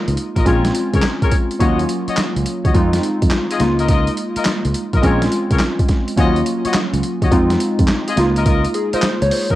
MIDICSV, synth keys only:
0, 0, Header, 1, 2, 480
1, 0, Start_track
1, 0, Tempo, 571429
1, 1346, Time_signature, 4, 2, 24, 8
1, 8025, End_track
2, 0, Start_track
2, 0, Title_t, "Synth keys"
2, 0, Program_c, 0, 88
2, 0, Control_c, 0, 64, 127
2, 0, Note_on_c, 0, 56, 72
2, 0, Note_on_c, 0, 58, 60
2, 0, Note_on_c, 0, 63, 64
2, 0, Note_on_c, 0, 65, 81
2, 356, Note_off_c, 0, 56, 0
2, 360, Note_off_c, 0, 58, 0
2, 363, Note_off_c, 0, 63, 0
2, 376, Note_on_c, 0, 56, 79
2, 382, Note_on_c, 0, 60, 74
2, 385, Note_off_c, 0, 65, 0
2, 390, Note_on_c, 0, 61, 71
2, 395, Note_on_c, 0, 65, 91
2, 396, Control_c, 0, 64, 0
2, 540, Control_c, 0, 64, 127
2, 1321, Note_off_c, 0, 56, 0
2, 1325, Note_off_c, 0, 60, 0
2, 1329, Note_off_c, 0, 61, 0
2, 1331, Note_off_c, 0, 65, 0
2, 1338, Note_on_c, 0, 54, 76
2, 1345, Note_on_c, 0, 58, 70
2, 1351, Note_on_c, 0, 61, 69
2, 1356, Control_c, 0, 64, 0
2, 1358, Note_on_c, 0, 65, 80
2, 1511, Control_c, 0, 64, 127
2, 2283, Note_off_c, 0, 54, 0
2, 2286, Note_off_c, 0, 58, 0
2, 2290, Note_off_c, 0, 61, 0
2, 2293, Note_off_c, 0, 65, 0
2, 2302, Note_on_c, 0, 56, 76
2, 2305, Note_on_c, 0, 60, 72
2, 2307, Note_on_c, 0, 63, 79
2, 2311, Note_on_c, 0, 65, 90
2, 2317, Control_c, 0, 64, 0
2, 2470, Control_c, 0, 64, 127
2, 3007, Note_off_c, 0, 56, 0
2, 3017, Note_on_c, 0, 56, 70
2, 3020, Note_off_c, 0, 63, 0
2, 3024, Note_on_c, 0, 58, 65
2, 3025, Note_off_c, 0, 60, 0
2, 3026, Note_off_c, 0, 65, 0
2, 3030, Note_on_c, 0, 63, 66
2, 3036, Control_c, 0, 64, 0
2, 3037, Note_on_c, 0, 65, 81
2, 3209, Control_c, 0, 64, 127
2, 4197, Note_off_c, 0, 56, 0
2, 4201, Note_off_c, 0, 58, 0
2, 4204, Note_off_c, 0, 63, 0
2, 4207, Note_off_c, 0, 65, 0
2, 4215, Note_on_c, 0, 56, 82
2, 4222, Note_on_c, 0, 60, 76
2, 4229, Note_on_c, 0, 61, 75
2, 4236, Control_c, 0, 64, 0
2, 4236, Note_on_c, 0, 65, 89
2, 4388, Control_c, 0, 64, 127
2, 5161, Note_off_c, 0, 56, 0
2, 5165, Note_off_c, 0, 60, 0
2, 5168, Note_off_c, 0, 61, 0
2, 5172, Note_off_c, 0, 65, 0
2, 5176, Note_on_c, 0, 53, 61
2, 5182, Note_on_c, 0, 58, 69
2, 5189, Note_on_c, 0, 61, 72
2, 5195, Control_c, 0, 64, 0
2, 5195, Note_on_c, 0, 65, 85
2, 5231, Note_on_c, 0, 54, 72
2, 5253, Note_off_c, 0, 53, 0
2, 5363, Control_c, 0, 64, 127
2, 6125, Note_off_c, 0, 58, 0
2, 6128, Note_off_c, 0, 61, 0
2, 6131, Note_off_c, 0, 65, 0
2, 6142, Note_on_c, 0, 56, 85
2, 6146, Note_on_c, 0, 60, 76
2, 6148, Note_on_c, 0, 63, 77
2, 6150, Note_off_c, 0, 54, 0
2, 6152, Note_on_c, 0, 65, 95
2, 6157, Control_c, 0, 64, 0
2, 6305, Control_c, 0, 64, 127
2, 6847, Note_off_c, 0, 56, 0
2, 6857, Note_on_c, 0, 56, 74
2, 6860, Note_off_c, 0, 63, 0
2, 6864, Note_on_c, 0, 58, 68
2, 6866, Note_off_c, 0, 60, 0
2, 6869, Note_off_c, 0, 65, 0
2, 6870, Note_on_c, 0, 63, 67
2, 6877, Control_c, 0, 64, 0
2, 6878, Note_on_c, 0, 65, 89
2, 7000, Control_c, 0, 64, 127
2, 7347, Note_on_c, 0, 68, 70
2, 7498, Note_off_c, 0, 68, 0
2, 7507, Note_on_c, 0, 72, 77
2, 7734, Note_off_c, 0, 72, 0
2, 7745, Note_on_c, 0, 73, 74
2, 7822, Note_off_c, 0, 73, 0
2, 7827, Note_on_c, 0, 72, 64
2, 7978, Note_off_c, 0, 72, 0
2, 7987, Note_on_c, 0, 70, 57
2, 8025, Note_off_c, 0, 56, 0
2, 8025, Note_off_c, 0, 58, 0
2, 8025, Note_off_c, 0, 63, 0
2, 8025, Note_off_c, 0, 65, 0
2, 8025, Note_off_c, 0, 70, 0
2, 8025, End_track
0, 0, End_of_file